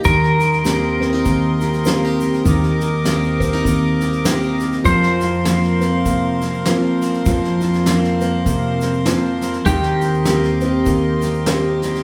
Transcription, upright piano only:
X:1
M:4/4
L:1/8
Q:"Swing" 1/4=100
K:Cdor
V:1 name="Upright piano"
E,2 B, C B,2 [B,CG]2 | E,2 B, C B,2 [B,CG]2 | F,2 B, C B,2 [B,CF]2 | F,2 B, C B,2 [B,CF]2 |
E,2 B, C B,2 [B,CG]2 |]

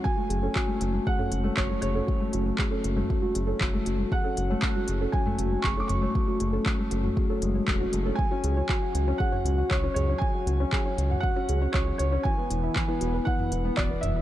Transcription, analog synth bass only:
X:1
M:4/4
L:1/8
Q:1/4=118
K:C#phr
V:1 name="Analog synth bass" clef=bass
z F,,, z F,,, z F,,, F,,, F,,, | z F,,, z F,,, z F,,, F,,, F,,, | z F,,, z F,,, z F,,, F,,, F,,, | z F,,, z F,,, z F,,, E,,, F,,, |
z C,, z C,, z C,, C,, C,, | z C,, z C,, z C,, C,, C,, | z E,,, z E,,, z E,,, E,,, E,,, |]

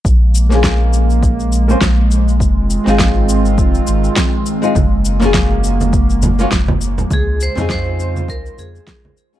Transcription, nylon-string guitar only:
X:1
M:4/4
L:1/16
Q:"Swing 16ths" 1/4=102
K:Bbm
V:1 name="Nylon-string guitar"
z3 [B,CDFA]8 [B,CDFc] z4 | z3 [A,CEFA]12 [A,CEFA] | z3 [B,DFGA]8 [B,DFGd] z4 | z3 [CDEFA]12 [CDEFA] |]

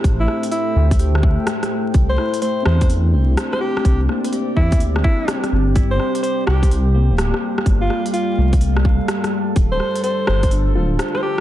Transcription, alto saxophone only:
X:1
M:4/4
L:1/16
Q:"Swing 16ths" 1/4=126
K:Gdor
V:1 name="Alto saxophone"
z E2 z E3 z8 z | z c3 c2 c2 z4 z c G2- | G z4 z E2 z2 E3 z3 | z c3 c2 G2 z8 |
z F2 z F3 z8 z | z c3 c2 c2 z4 z c G2 |]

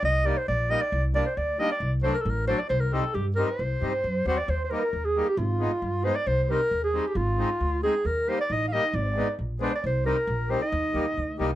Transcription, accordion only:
X:1
M:2/4
L:1/16
Q:1/4=135
K:none
V:1 name="Accordion"
z2 [G,_B,_E] z3 [G,B,E] z | z2 [G,_B,D] z3 [G,B,D] z | z2 [^F,A,D] z3 [F,A,D] z | z2 [G,C_E] z3 [G,CE] z |
z2 [G,C_E] z3 [G,C^F] z | z2 [G,_B,_E] z3 [G,B,E] z | z2 [_A,_C_E] z3 [A,CE] z | z2 [G,C_E] z3 [G,CE] z |
z2 [_A,C_E] z3 [A,CE] z | z2 [G,_B,_E] z3 [G,B,E] z | z2 [_A,_C_E] z3 [A,CD] z | z2 [G,C_E] z3 [G,CE] z |
z2 [G,_B,_E] z3 [G,B,E] z |]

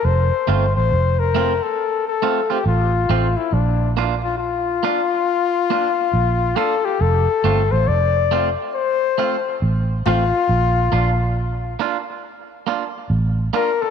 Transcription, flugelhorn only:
X:1
M:4/4
L:1/16
Q:"Swing 16ths" 1/4=69
K:F
V:1 name="Flugelhorn"
c3 c2 B2 A2 A2 G F3 E | D2 z F F8- F2 A G | A3 c d3 z c4 z2 F2- | F6 z8 B A |]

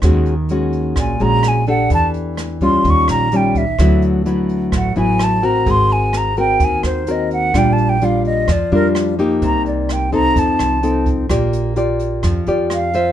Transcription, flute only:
X:1
M:4/4
L:1/8
Q:1/4=128
K:Eblyd
V:1 name="Flute"
z4 _a b a _g | a z2 c' _d' b g =e- | =e z3 ^f _a =a b | c' _a b g a c e _g |
(3g a g f e d B z2 | b d g b a3 z | z6 f2 |]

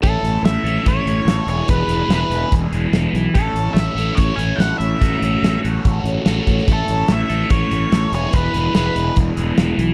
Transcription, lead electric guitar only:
X:1
M:4/4
L:1/8
Q:1/4=144
K:A
V:1 name="Lead electric guitar"
A2 e2 c3 c | B2 B2 z4 | A2 e2 c g f e- | e3 z4 z |
A2 e2 c3 c | B2 B2 z4 |]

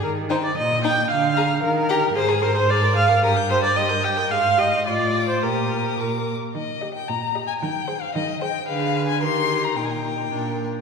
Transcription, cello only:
X:1
M:2/4
L:1/8
Q:1/4=112
K:Eb
V:1 name="Cello" clef=bass
E,2 B,,2 | D,2 E,2 | A,,4 | G,,4 |
A,,2 =A,,2 | B,,2 B,, z | E,2 B,,2 | E,2 E,2 |
D,2 E,2 | B,,2 B,, z |]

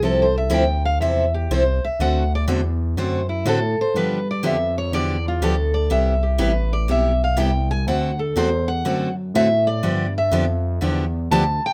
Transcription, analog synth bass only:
X:1
M:4/4
L:1/8
Q:"Swing" 1/4=122
K:Ddor
V:1 name="Analog synth bass" clef=bass
C,,2 D,,2 E,,2 C,, C,, | D,,2 E,,2 ^F,,2 A,, A,, | G,,2 F,,2 E,,2 D,,2 | C,,2 A,,,2 B,,,2 C,,2 |
D,,2 E,,2 ^F,,2 A,,2 | G,,2 F,,2 E,,2 D,, D,, |]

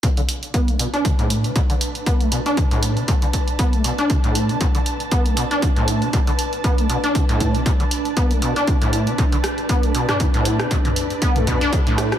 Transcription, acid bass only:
X:1
M:4/4
L:1/16
Q:"Swing 16ths" 1/4=118
K:Bm
V:1 name="Acid bass" clef=bass
B,, D, z2 B, A, B,, D B,, A,,2 B,, B,, D, z2 | B, A, B,, D B,, A,,2 B,, B,, D, z2 B, A, B,, D | B,, A,,2 B,, B,, D, z2 B, A, B,, D B,, A,,2 B,, | B,, D, z2 B, A, B,, D B,, A,,2 B,, B,, D, z2 |
B, A, B,, D B,, A,,2 B,, B,, D, z2 B, A, B,, D | B,, A,,2 B,, B,, D, z2 B, A, B,, D B,, A,,2 B,, |]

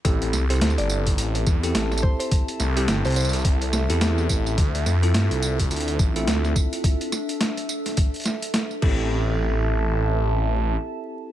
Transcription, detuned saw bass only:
X:1
M:4/4
L:1/16
Q:"Swing 16ths" 1/4=106
K:Am
V:1 name="Detuned saw bass" clef=bass
A,,, A,,, C,,2 D,, G,,,3 A,,,2 E,,2 A,,,2 z2 | z2 C,,2 G,,, C,,6 E,,3 A,,,2 | D,, D,, F,,2 G,, C,,3 D,,2 A,,,2 D,,2 z2 | z12 z2 A,,,2- |
A,,,12 z4 |]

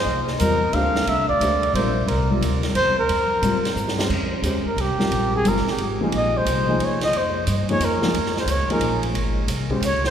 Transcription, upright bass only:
X:1
M:3/4
L:1/8
Q:"Swing" 1/4=178
K:Cphr
V:1 name="Upright bass" clef=bass
C,,2 =E,,2 =D,,2 | C,, z =D,,2 B,,,2 | C,,2 =D,,2 =E,,2 | F,,2 =A,,2 G,,2 |
[K:Fm] F,,2 E,, z C,, z | B,,,2 G,,, z A,,,2 | B,,,2 C,,2 E,,2 | F,,2 G,,2 F,,2 |
E,,2 D,, z B,,,2 | A,,,2 C,,2 D,,2 |]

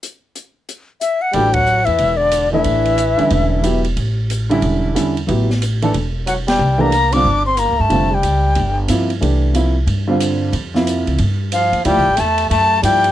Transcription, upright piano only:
X:1
M:4/4
L:1/8
Q:"Swing" 1/4=183
K:Aphr
V:1 name="Upright piano"
z8 | [E,A,D^F] z6 [E,A,DE]- | [E,A,DE]2 z [D,G,^CE]3 [^F,=B,EG] z | z3 [D,G,^CE]3 [D,G,CE] z |
[^F,=B,EG] z2 [E,A,DA] z4 | z [E,A,DG] z [D,G,CF] z4 | [D,G,CF] z4 z [C,F,B,E] z | [E,A,DG]2 [C,F,B,E] z2 [D,G,CF]3 |
z [C,F,B,E]3 z4 | [K:Dm] [F,B,EG] z4 z [F,B,EG] z |]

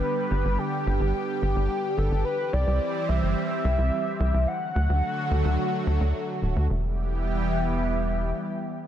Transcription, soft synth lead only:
X:1
M:4/4
L:1/8
Q:1/4=108
K:Em
V:1 name="Soft synth lead"
B2 G2 G3 A | B d2 e e4 | f6 z2 | e8 |]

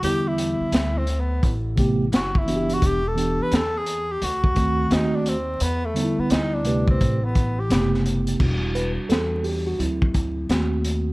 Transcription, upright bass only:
X:1
M:4/4
L:1/16
Q:"Swing 16ths" 1/4=86
K:Em
V:1 name="Upright bass" clef=bass
E,,3 z D,,4 A,,,4 F,,,4 | E,,,3 z E,,4 D,,4 ^D,,4 | E,,3 z D,,4 A,,,4 F,,,4 | E,,,3 z E,,4 D,,4 ^D,,4 |]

